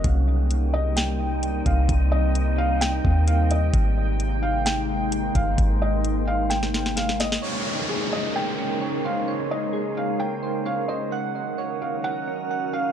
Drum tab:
HH |x---x---x---x-x-|x---x---x---x-x-|x---x---x---x-x-|x---x---x---x-x-|
SD |--------o-------|--------o-------|--------o-------|--------oooooooo|
BD |o-------------o-|o---------o-----|o-------------o-|o---------------|

HH |----------------|----------------|----------------|
SD |----------------|----------------|----------------|
BD |----------------|----------------|----------------|